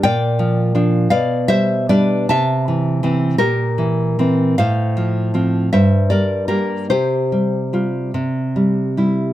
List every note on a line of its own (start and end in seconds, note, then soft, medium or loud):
0.03 1.08 A#2 medium
0.03 1.08 D5 medium
0.03 1.07 G5 loud
0.39 0.73 F3 medium
0.75 1.08 F3 medium
0.75 1.08 D4 medium
1.10 2.27 B2 medium
1.10 1.47 D5 medium
1.10 1.48 F5 medium
1.48 1.88 G3 medium
1.48 1.88 C5 medium
1.48 1.88 E5 loud
1.89 2.26 G3 medium
1.89 2.26 D4 medium
1.89 2.27 B4 medium
1.89 2.28 D5 medium
2.29 3.35 C3 medium
2.29 3.35 E5 medium
2.29 3.34 A5 loud
2.68 3.02 E3 soft
3.03 3.35 E3 medium
3.03 3.36 C4 medium
3.38 4.55 A#2 medium
3.38 4.54 G4 medium
3.38 4.54 A#4 medium
3.78 4.18 E3 medium
4.19 4.55 E3 soft
4.19 4.55 C4 medium
4.58 5.69 A2 medium
4.58 5.69 C5 medium
4.58 5.68 F5 medium
4.97 5.33 F3 medium
5.34 5.69 F3 soft
5.34 5.69 C4 soft
5.73 6.87 G2 medium
5.73 6.09 C5 medium
5.73 6.09 E5 medium
6.10 6.47 G3 soft
6.10 6.47 A#4 medium
6.10 6.48 D5 medium
6.48 6.86 G3 soft
6.48 6.86 A#3 soft
6.48 6.87 G4 medium
6.48 6.88 A#4 medium
6.90 8.11 C3 medium
6.90 8.12 G4 medium
6.90 8.11 C5 medium
7.32 7.72 G3 soft
7.73 8.11 G3 soft
7.73 8.11 F4 soft
8.14 9.33 C3 medium
8.56 8.96 G3 soft
8.97 9.33 G3 soft
8.97 9.33 E4 soft